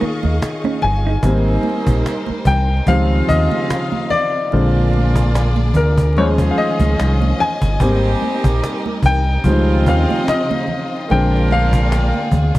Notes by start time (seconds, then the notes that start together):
Already playing: D#3 D#4 F4 G#4 A#4 D#5 F5 C#6
0.01 A#3, muted fingered electric bass stroke, muted conga, high conga
0.23 D#2, high conga
0.42 cajon slap, muted conga
0.64 C#4, high conga
0.80 G1 G#5, cajon slap, muted conga, low conga
0.84 muted hollow-body jazz guitar stroke
1.07 D#4
1.21 G#1 G3 A#3 C4 D#4 A#4 C5, cajon bass, muted conga
1.63 muted conga, high conga
1.87 A#1, cajon bass
2.06 cajon slap
2.27 muted fingered electric bass stroke, high conga
2.45 C2 G5, cajon bass, low conga
2.67 cajon slap
2.86 C#2 C#3 D#3 F3 G3 G#3 C4 F4 F5, cajon bass, cajon slap, muted conga, high conga
3.29 D#2 D#5, cajon bass, high conga
3.50 cajon slap, high conga
3.70 cajon slap, muted conga
3.92 high conga
4.10 D5, muted conga, low conga
4.32 cajon slap
4.34 cajon slap
4.49 D3 G#3 A#3 D4 F4 G#4 D5, cajon slap, muted conga
4.53 A#1 C4
4.90 cajon slap, high conga
5.15 cajon bass
5.35 cajon slap, muted conga
5.56 high conga
5.74 D2 A#4, cajon bass, muted conga, low conga
5.97 cajon bass
6.15 D#2 D#3 F3 G#3 C#4 F4 G#4 C5 C#5 D#5, cajon slap, muted conga, high conga
6.38 cajon bass
6.51 F5, cajon slap
6.58 D#5, high conga
6.79 C#2, cajon bass, cajon slap, high conga
6.99 C2, cajon slap
7.22 high conga
7.37 G#5, cajon slap, low conga
7.62 G1, cajon bass, cajon slap
7.80 G#1 G3 A#3 C4 D#4 G4 A#4, cajon bass, muted conga
8.19 cajon slap, high conga
8.44 A#1, cajon bass
8.63 cajon slap
8.86 high conga
9.03 C2 G5, cajon bass, muted conga, low conga
9.25 cajon slap
9.44 C#2 C#3 D#3 F3 G3 G#3 C4 F4 D#5, cajon bass, cajon slap, muted conga, high conga
9.48 C4
9.86 D#2 F5, cajon bass, muted conga, high conga
10.08 cajon slap, high conga
10.28 D#5, cajon slap, muted conga
10.51 high conga
10.66 cajon slap, low conga
10.89 cajon slap
10.91 cajon slap
11.08 A#1 D3 G#3 A#3 C4 D4 F4 G#4 A#4 D5 G5, cajon slap, muted conga
11.47 cajon slap, muted conga, high conga
11.52 F5
11.73 cajon bass
11.92 cajon slap, muted conga
12.14 high conga
12.31 D2, cajon bass, muted conga, low conga
12.55 cajon bass